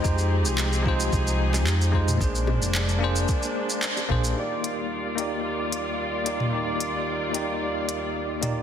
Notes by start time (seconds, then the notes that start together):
Already playing: C4 G4
0.02 F2 F3 G#3 D#4 F4 G#4, kick, shaker
0.08 C5
0.18 shaker
0.45 C2, shaker
0.58 clap, shaker
0.73 shaker
0.83 G#3 D#4, kick
0.87 F4 C5
1.00 shaker
1.12 C2, kick, shaker
1.27 shaker
1.54 clap, high bongo, shaker
1.66 F2, clap, shaker
1.81 shaker
1.92 G#3 D#4 F4 C5, kick
2.08 mid tom, shaker
2.17 A#1 G#3 A#3 D4 G#4, kick, shaker
2.24 C5
2.35 shaker
2.47 mid tom, high bongo
2.61 F1, shaker
2.75 clap, shaker
2.89 shaker
2.99 A#3 D4 G#4
3.04 C5
3.16 shaker
3.28 kick, shaker
3.43 shaker
3.70 shaker
3.82 clap, shaker
3.97 high bongo, shaker
4.09 A#1 A#3 D4 G#4 C5, kick, mid tom
4.24 shaker
4.34 D#2 D#3 G3 A#3 D#4 F4 D5
4.38 G4 D5
4.64 closed hi-hat
5.16 A#3 D#4 G4, closed hi-hat
5.21 D5
5.72 closed hi-hat
6.24 A#3 D#4 G4 D5, closed hi-hat
6.40 mid tom
6.50 A#3 D#4
6.54 G4 D5
6.80 closed hi-hat
7.31 A#3 D#4 G4, closed hi-hat
7.37 D5
7.89 closed hi-hat
8.41 A#3 D#4 G4 D5, closed hi-hat, mid tom